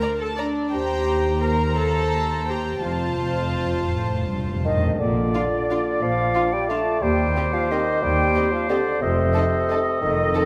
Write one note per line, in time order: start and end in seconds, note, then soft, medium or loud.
0.00 0.19 A#4 medium
0.00 0.10 D5 medium
0.00 0.18 A#5 medium
0.00 0.10 A#5 medium
0.18 0.27 A4 medium
0.18 0.36 A5 medium
0.37 0.72 D4 medium
0.37 0.73 D5 medium
0.37 0.46 D5 soft
0.37 0.46 A#5 soft
0.71 2.78 D#2 medium
0.71 1.43 G4 medium
0.71 1.39 C5 medium
0.71 1.41 G5 medium
0.71 1.39 A#5 soft
1.42 1.76 A#4 medium
1.42 2.45 C5 soft
1.42 1.75 A#5 medium
1.42 2.45 A#5 medium
1.76 2.46 A4 medium
1.76 2.47 A5 medium
2.47 2.83 G4 medium
2.47 2.81 C5 soft
2.47 2.82 G5 medium
2.47 2.82 A#5 soft
2.81 4.79 F1 soft
2.81 3.14 F2 soft
2.81 2.89 F2 soft
2.81 4.65 F4 medium
2.81 4.79 C5 medium
2.81 4.64 F5 medium
2.81 4.79 A5 medium
2.90 2.97 F2 soft
3.06 3.13 F2 soft
3.14 3.22 F2 soft
3.14 3.87 F2 medium
3.23 3.31 F2 soft
3.32 3.39 F2 soft
3.40 3.47 F2 soft
3.48 3.55 F2 soft
3.64 3.71 F2 soft
3.73 3.80 F2 soft
3.81 3.88 F2 soft
3.89 3.95 F2 soft
3.89 4.27 A2 medium
3.96 4.03 F2 soft
4.04 4.10 F2 soft
4.12 4.18 F2 medium
4.20 4.26 F2 medium
4.27 4.35 F2 medium
4.27 4.82 G2 soft
4.36 4.44 F2 medium
4.45 4.52 F2 medium
4.53 4.59 F2 medium
4.60 4.68 F2 medium
4.65 5.01 D#3 medium
4.65 4.97 D#5 medium
4.69 4.76 F2 medium
4.77 4.85 F2 medium
4.83 5.00 F2 soft
4.83 4.93 F2 medium
4.99 5.28 A#1 medium
4.99 5.28 A#2 medium
4.99 6.02 D3 medium
4.99 6.99 F4 medium
4.99 6.04 D5 medium
4.99 7.04 D5 medium
5.34 5.42 D4 medium
5.34 5.47 D4 soft
5.34 5.47 F4 soft
5.34 5.43 F4 medium
5.34 5.42 F5 soft
5.69 5.77 D4 soft
5.69 5.82 D4 soft
5.69 5.79 F4 medium
5.69 5.83 F4 soft
5.69 5.78 F5 soft
6.01 6.30 A#1 medium
6.01 6.29 A#2 medium
6.01 6.55 F3 medium
6.01 6.54 F5 medium
6.35 6.48 D4 soft
6.35 6.44 D4 medium
6.35 6.43 F4 medium
6.35 6.48 F4 soft
6.35 6.43 F5 soft
6.53 6.71 G3 medium
6.53 6.68 G5 medium
6.69 7.04 A3 medium
6.69 6.78 D4 soft
6.69 6.82 D4 soft
6.69 6.81 F4 soft
6.69 6.78 F4 soft
6.69 6.79 F5 soft
6.69 7.01 A5 medium
7.02 7.30 D#2 medium
7.02 7.53 G3 medium
7.02 8.98 G4 medium
7.02 9.01 C5 medium
7.02 7.55 G5 medium
7.35 7.48 C4 soft
7.35 7.44 C4 medium
7.35 7.48 G4 soft
7.35 7.45 G4 medium
7.35 7.45 D#5 soft
7.53 7.70 F3 medium
7.53 7.73 F5 medium
7.70 8.04 D#3 medium
7.70 7.82 C4 soft
7.70 7.79 C4 medium
7.70 7.82 G4 soft
7.70 7.80 G4 soft
7.70 7.79 D#5 soft
7.70 8.02 D#5 medium
8.03 8.30 D#2 medium
8.03 8.54 G3 medium
8.03 8.52 G5 medium
8.36 8.49 C4 soft
8.36 8.45 C4 medium
8.36 8.44 G4 medium
8.36 8.48 G4 soft
8.36 8.45 D#5 soft
8.53 8.69 F3 medium
8.53 8.72 F5 medium
8.69 9.03 D3 medium
8.69 8.81 C4 soft
8.69 8.78 C4 soft
8.69 8.81 G4 medium
8.69 8.78 G4 medium
8.69 9.05 D5 medium
8.69 8.78 D#5 soft
9.01 9.29 F1 medium
9.01 9.29 F2 medium
9.01 10.01 C3 medium
9.01 10.45 A4 medium
9.01 9.71 C5 medium
9.01 10.45 D#5 medium
9.34 9.43 C4 medium
9.34 9.47 D#4 soft
9.34 9.42 A4 medium
9.34 9.48 A4 soft
9.34 9.44 D#5 medium
9.68 9.78 C4 medium
9.68 9.81 D#4 medium
9.68 9.80 A4 medium
9.68 9.79 A4 soft
9.68 9.78 D#5 soft
10.02 10.29 F1 medium
10.02 10.28 F2 medium
10.02 10.45 D#3 medium
10.02 10.45 D#5 medium
10.33 10.43 C4 medium
10.33 10.45 D#4 medium
10.33 10.45 A4 medium
10.33 10.43 A4 medium
10.33 10.43 D#5 soft